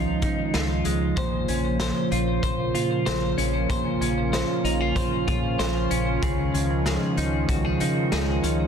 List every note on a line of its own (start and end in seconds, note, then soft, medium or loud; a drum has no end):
0.00 0.24 C#2 medium
0.00 1.17 C#3 medium
0.00 1.13 D#3 medium
0.00 6.18 F3 medium
0.00 0.84 G#3 medium
0.00 1.13 G#3 medium
0.00 1.13 C#4 medium
0.00 0.21 D#4 medium
0.00 1.15 D#4 medium
0.00 0.54 F4 medium
0.22 0.50 C#3 medium
0.22 1.23 D#4 medium
0.22 kick medium
0.22 closed hi-hat soft
0.54 0.82 C#2 medium
0.54 2.11 F4 medium
0.54 snare loud
0.54 closed hi-hat medium
0.85 1.13 C#2 medium
0.85 1.23 G#3 soft
0.85 closed hi-hat medium
1.17 1.45 A#1 medium
1.17 3.68 A#2 medium
1.17 6.18 C#3 medium
1.17 6.19 A#3 medium
1.17 8.67 F4 medium
1.17 1.79 C5 medium
1.17 3.68 C5 medium
1.17 kick loud
1.17 closed hi-hat medium
1.48 1.90 A#1 medium
1.48 3.37 C#4 soft
1.48 closed hi-hat soft
1.80 2.42 C5 medium
1.80 snare loud
1.80 closed hi-hat medium
2.12 2.40 A#1 medium
2.12 2.74 F4 medium
2.12 closed hi-hat medium
2.43 2.71 A#1 medium
2.43 3.05 C5 medium
2.43 kick medium
2.43 closed hi-hat medium
2.75 3.08 A#2 medium
2.75 4.64 F4 medium
2.75 closed hi-hat soft
3.06 3.34 A#1 medium
3.06 3.69 C5 medium
3.06 snare loud
3.06 closed hi-hat medium
3.38 3.66 A#1 medium
3.38 4.01 C#4 medium
3.38 closed hi-hat medium
3.70 3.97 A#1 loud
3.70 6.22 A#2 medium
3.70 8.67 C#4 medium
3.70 4.32 C5 medium
3.70 kick medium
3.70 closed hi-hat medium
4.01 4.43 A#1 medium
4.01 5.90 C#4 medium
4.01 closed hi-hat soft
4.33 4.95 C5 medium
4.33 snare medium
4.33 closed hi-hat medium
4.64 4.92 A#1 medium
4.64 4.81 D#4 medium
4.64 closed hi-hat soft
4.81 5.26 F4 medium
4.96 5.24 A#1 loud
4.96 5.58 C5 medium
4.96 kick medium
4.96 closed hi-hat medium
5.28 5.56 A#2 medium
5.28 6.23 F4 medium
5.28 kick medium
5.28 closed hi-hat soft
5.59 5.87 A#1 medium
5.59 6.29 C5 medium
5.59 snare loud
5.59 closed hi-hat medium
5.91 6.19 A#1 medium
5.91 6.54 C#4 medium
5.91 closed hi-hat medium
6.22 6.50 C#2 medium
6.22 8.67 C#3 medium
6.22 8.67 D#3 medium
6.22 8.67 F3 medium
6.22 8.67 G#3 medium
6.22 6.86 G#4 medium
6.22 kick loud
6.22 closed hi-hat medium
6.54 6.96 C#2 medium
6.54 8.42 C#4 medium
6.54 closed hi-hat soft
6.86 7.48 G#4 medium
6.86 snare loud
6.86 closed hi-hat medium
7.17 7.45 C#2 medium
7.17 7.80 D#4 medium
7.17 closed hi-hat medium
7.49 7.77 C#2 medium
7.49 7.65 F#4 medium
7.49 kick medium
7.49 closed hi-hat medium
7.65 8.11 G#4 soft
7.80 8.08 C#3 medium
7.80 8.67 D#4 medium
7.80 closed hi-hat soft
8.12 8.40 C#2 medium
8.12 8.67 G#4 medium
8.12 snare loud
8.12 closed hi-hat medium
8.44 8.67 C#2 medium
8.44 8.67 C#4 medium
8.44 closed hi-hat medium